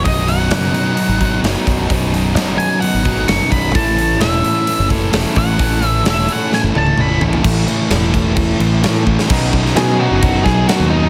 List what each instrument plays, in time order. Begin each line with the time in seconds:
Already playing: distorted electric guitar B3
0.04 fingered electric bass B0, distorted electric guitar B1 F#2 B2 F#3 D#4, lead electric guitar D#5, kick, open hi-hat
0.27 distorted electric guitar B2 F#3 D#4, lead electric guitar F#5, open hi-hat
0.51 fingered electric bass F#1, distorted electric guitar F#2 B2 F#3 D#4, snare, open hi-hat
0.73 distorted electric guitar B2 F#3 D#4, open hi-hat
0.96 distorted electric guitar B1 F#2 B2 F#3 D#4, open hi-hat
1.09 fingered electric bass G#1
1.19 distorted electric guitar B2 F#3 D#4, kick, open hi-hat
1.42 fingered electric bass F#1, distorted electric guitar B1 F#2 B2 F#3, snare, open hi-hat
1.46 distorted electric guitar D#4
1.64 fingered electric bass B0, distorted electric guitar B2 F#3 D#4, kick, open hi-hat
1.89 fingered electric bass B0, distorted electric guitar B1 F#2 B2 F#3 D#4, kick, open hi-hat
2.12 distorted electric guitar B2 F#3 D#4, open hi-hat
2.35 fingered electric bass F#1, distorted electric guitar F#2 B2 F#3 D#4, snare, open hi-hat
2.58 distorted electric guitar F#3 D#4, lead electric guitar G#5, open hi-hat
2.62 distorted electric guitar B2
2.81 distorted electric guitar B1 F#2 B2 F#3 D#4, lead electric guitar F#5, open hi-hat
2.94 fingered electric bass G#1
3.05 distorted electric guitar B2 F#3 D#4, kick, open hi-hat
3.26 fingered electric bass F#1, distorted electric guitar B1 F#2, lead electric guitar C#6, snare, open hi-hat
3.30 distorted electric guitar B2 F#3 D#4
3.50 fingered electric bass B0, distorted electric guitar B2 F#3 D#4, lead electric guitar B5, kick, open hi-hat
3.75 fingered electric bass A1, distorted electric guitar A2 E3 A3 C#4 E4 A4, lead electric guitar A5, kick, open hi-hat
3.98 distorted electric guitar A3 C#4 E4 A4, open hi-hat
4.21 fingered electric bass E1, distorted electric guitar A3 C#4 E4 A4, lead electric guitar E5, snare, open hi-hat
4.43 distorted electric guitar A3 C#4 E4 A4, open hi-hat
4.67 distorted electric guitar A2 E3 A3 C#4 E4 A4, open hi-hat
4.79 fingered electric bass F#1
4.89 distorted electric guitar A3 C#4 E4 A4, kick, open hi-hat
5.12 fingered electric bass E1, distorted electric guitar A2 E3 A3 C#4 E4 A4, snare, open hi-hat
5.35 fingered electric bass A1, distorted electric guitar A3 C#4 E4 A4, lead electric guitar F#5, kick, open hi-hat
5.58 fingered electric bass A1, distorted electric guitar A2 E3 A3 C#4 E4 A4, kick, open hi-hat
5.81 distorted electric guitar A3 C#4 E4 A4, open hi-hat
5.86 lead electric guitar E5
6.05 fingered electric bass E1, distorted electric guitar A3 C#4 E4 A4, snare, open hi-hat
6.10 lead electric guitar E5
6.27 distorted electric guitar A3 C#4 E4 A4, open hi-hat
6.32 lead electric guitar F#5
6.51 distorted electric guitar A2 E3 A3 C#4 E4 A4, lead electric guitar G#5, snare
6.64 fingered electric bass F#1
6.74 fingered electric bass C#1, distorted electric guitar A3 C#4 E4 A4, high tom
6.78 lead electric guitar A5
6.87 high tom
6.95 fingered electric bass B0, distorted electric guitar A2 E3 A3 C#4 E4, mid tom
7.00 distorted electric guitar A4, lead electric guitar B5
7.18 fingered electric bass A1, distorted electric guitar A3 C#4 E4 A4, floor tom
7.33 floor tom
7.43 fingered electric bass A1, distorted electric guitar A2 E3 A3, kick, crash
7.67 distorted electric guitar A2 E3 A3, crash
7.89 fingered electric bass E1, distorted electric guitar A2 E3 A3, snare, crash
8.12 distorted electric guitar A2 E3 A3, kick, crash
8.35 distorted electric guitar A2 E3 A3, kick, crash
8.59 fingered electric bass A1, distorted electric guitar A2 E3 A3, crash
8.82 distorted electric guitar A2 E3 A3, fingered electric bass A2, snare, crash
9.05 fingered electric bass A1, distorted electric guitar A2 E3 A3, kick
9.19 snare
9.29 distorted electric guitar B1 F#2 B2 F#3 D#4, fingered electric bass B1, kick, crash
9.53 distorted electric guitar B2 F#3 D#4, kick
9.66 snare
9.75 distorted electric guitar F#2 B2 F#3 D#4, fingered electric bass B2, lead electric guitar G#4, snare, crash
9.99 distorted electric guitar B1 F#2 B2 F#3 D#4, lead electric guitar F#4
10.11 fingered electric bass F#1
10.23 kick, crash
10.44 fingered electric bass B1, distorted electric guitar B2 F#3 D#4, lead electric guitar G#4, kick, snare
10.68 distorted electric guitar B1 F#2 B2 F#3 D#4, lead electric guitar F#4, snare, crash
10.80 fingered electric bass D#2
10.90 distorted electric guitar F#3 D#4, lead electric guitar D#4
10.94 distorted electric guitar B2